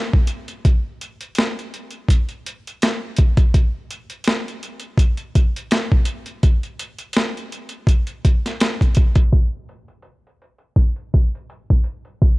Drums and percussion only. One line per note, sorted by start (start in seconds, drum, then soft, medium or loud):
0.13 kick medium
0.27 closed hi-hat medium
0.48 closed hi-hat soft
0.65 kick loud
0.65 closed hi-hat medium
1.01 closed hi-hat medium
1.21 closed hi-hat medium
1.35 snare loud
1.35 closed hi-hat medium
1.59 closed hi-hat soft
1.74 closed hi-hat medium
1.91 closed hi-hat soft
2.09 kick medium
2.09 closed hi-hat medium
2.29 closed hi-hat soft
2.46 closed hi-hat medium
2.67 closed hi-hat medium
2.82 snare loud
2.82 closed hi-hat medium
3.16 kick loud
3.16 closed hi-hat medium
3.37 kick loud
3.37 closed hi-hat soft
3.54 kick loud
3.54 closed hi-hat medium
3.91 closed hi-hat medium
4.10 closed hi-hat medium
4.24 snare loud
4.24 closed hi-hat medium
4.48 closed hi-hat soft
4.63 closed hi-hat medium
4.80 closed hi-hat soft
4.98 kick medium
4.98 closed hi-hat medium
5.17 closed hi-hat soft
5.35 kick medium
5.35 closed hi-hat medium
5.56 closed hi-hat medium
5.71 snare loud
5.71 closed hi-hat medium
5.92 kick medium
6.05 closed hi-hat medium
6.26 closed hi-hat soft
6.43 kick loud
6.43 closed hi-hat medium
6.63 closed hi-hat soft
6.79 closed hi-hat medium
6.99 closed hi-hat medium
7.13 snare loud
7.13 closed hi-hat medium
7.37 closed hi-hat soft
7.52 closed hi-hat medium
7.69 closed hi-hat soft
7.87 kick medium
7.87 closed hi-hat medium
8.07 closed hi-hat soft
8.25 kick medium
8.25 closed hi-hat medium
8.46 snare soft
8.46 closed hi-hat medium
8.60 snare loud
8.60 closed hi-hat loud
8.81 kick medium
8.81 closed hi-hat soft
8.95 kick loud
8.95 closed hi-hat medium
9.15 kick medium
9.15 closed hi-hat soft
9.33 kick medium
9.33 closed hi-hat medium
9.69 closed hi-hat medium
9.88 closed hi-hat soft
10.02 closed hi-hat medium
10.27 closed hi-hat soft
10.42 closed hi-hat medium
10.58 closed hi-hat soft
10.76 kick medium
10.76 closed hi-hat medium
10.96 closed hi-hat soft
11.14 kick medium
11.14 closed hi-hat medium
11.35 closed hi-hat soft
11.50 closed hi-hat medium
11.70 kick medium
11.84 closed hi-hat medium
12.05 closed hi-hat soft
12.22 kick loud
12.22 closed hi-hat medium